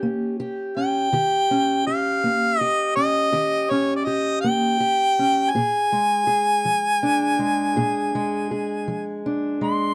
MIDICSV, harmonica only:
0, 0, Header, 1, 2, 480
1, 0, Start_track
1, 0, Tempo, 738007
1, 725, Time_signature, 12, 3, 24, 8
1, 6466, End_track
2, 0, Start_track
2, 0, Title_t, "Harmonica"
2, 0, Program_c, 0, 22
2, 502, Note_on_c, 0, 79, 99
2, 1186, Note_off_c, 0, 79, 0
2, 1214, Note_on_c, 0, 77, 102
2, 1689, Note_off_c, 0, 77, 0
2, 1689, Note_on_c, 0, 75, 102
2, 1901, Note_off_c, 0, 75, 0
2, 1924, Note_on_c, 0, 75, 110
2, 2407, Note_on_c, 0, 73, 87
2, 2417, Note_off_c, 0, 75, 0
2, 2570, Note_off_c, 0, 73, 0
2, 2574, Note_on_c, 0, 74, 63
2, 2633, Note_on_c, 0, 75, 87
2, 2642, Note_off_c, 0, 74, 0
2, 2862, Note_off_c, 0, 75, 0
2, 2866, Note_on_c, 0, 79, 109
2, 3578, Note_on_c, 0, 80, 117
2, 3588, Note_off_c, 0, 79, 0
2, 5995, Note_off_c, 0, 80, 0
2, 6266, Note_on_c, 0, 84, 103
2, 6466, Note_off_c, 0, 84, 0
2, 6466, End_track
0, 0, End_of_file